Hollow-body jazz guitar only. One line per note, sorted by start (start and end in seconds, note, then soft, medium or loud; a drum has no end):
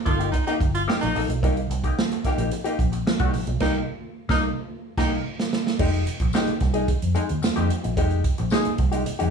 0.05 0.20 A#3 medium
0.05 0.19 D#4 medium
0.05 0.19 A4 medium
0.19 0.32 A#3 medium
0.19 0.33 D#4 soft
0.19 0.33 G4 medium
0.33 muted hollow-body jazz guitar stroke medium
0.47 0.59 A#3 medium
0.47 0.60 D#4 medium
0.47 0.61 G4 medium
0.61 muted hollow-body jazz guitar stroke soft
0.74 muted hollow-body jazz guitar stroke soft
0.88 1.06 A#3 medium
0.88 1.02 D#4 medium
0.88 1.00 G4 medium
1.02 muted hollow-body jazz guitar stroke medium
1.15 1.29 A#3 medium
1.15 1.29 D#4 medium
1.15 1.29 A4 medium
1.29 muted hollow-body jazz guitar stroke soft
1.43 1.60 A#3 medium
1.43 1.57 D#4 medium
1.43 1.56 G4 medium
1.57 muted hollow-body jazz guitar stroke soft
1.71 muted hollow-body jazz guitar stroke soft
1.84 1.97 A#3 medium
1.84 1.97 D#4 medium
1.84 1.98 G4 medium
1.98 muted hollow-body jazz guitar stroke soft
2.13 muted hollow-body jazz guitar stroke soft
2.25 2.39 A#3 medium
2.25 2.38 D#4 medium
2.25 2.37 G4 medium
2.38 2.51 A#3 soft
2.38 2.51 D#4 medium
2.38 2.52 G4 medium
2.52 muted hollow-body jazz guitar stroke soft
2.64 2.78 A#3 medium
2.64 2.78 D#4 medium
2.64 2.79 G4 loud
2.79 muted hollow-body jazz guitar stroke soft
2.92 muted hollow-body jazz guitar stroke soft
3.07 muted hollow-body jazz guitar stroke soft
3.20 3.33 A#3 medium
3.20 3.34 D#4 medium
3.20 3.34 G4 medium
3.34 muted hollow-body jazz guitar stroke soft
3.47 muted hollow-body jazz guitar stroke soft
3.61 3.79 A#3 medium
3.61 3.80 D#4 medium
3.61 3.80 G4 loud
4.29 4.48 A#3 medium
4.29 4.48 D#4 loud
4.98 5.17 A#3 loud
4.98 5.16 D#4 loud
4.98 5.16 G4 loud
5.79 6.04 G#3 medium
5.79 6.05 D#4 medium
5.79 6.05 G4 medium
6.21 muted hollow-body jazz guitar stroke medium
6.34 6.51 G#3 medium
6.34 6.52 D#4 medium
6.34 6.52 G4 medium
6.61 muted hollow-body jazz guitar stroke soft
6.74 6.87 G#3 medium
6.74 6.87 D#4 medium
6.74 6.88 G#4 medium
6.88 muted hollow-body jazz guitar stroke soft
7.15 7.29 G#3 medium
7.15 7.28 D#4 medium
7.15 7.28 G#4 medium
7.29 muted hollow-body jazz guitar stroke soft
7.42 muted hollow-body jazz guitar stroke soft
7.56 7.70 G#3 medium
7.56 7.70 D#4 medium
7.56 7.70 G4 medium
7.71 muted hollow-body jazz guitar stroke soft
7.84 muted hollow-body jazz guitar stroke soft
7.97 8.22 G#3 medium
7.97 8.23 D#4 medium
7.97 8.23 G4 medium
8.38 muted hollow-body jazz guitar stroke medium
8.51 8.69 G#3 medium
8.51 8.69 D#4 medium
8.51 8.69 G#4 loud
8.79 muted hollow-body jazz guitar stroke soft
8.92 9.04 G#3 medium
8.92 9.05 D#4 medium
8.92 9.05 G4 medium
9.05 muted hollow-body jazz guitar stroke soft
9.19 9.30 G#3 medium
9.19 9.30 D#4 medium
9.19 9.30 G4 medium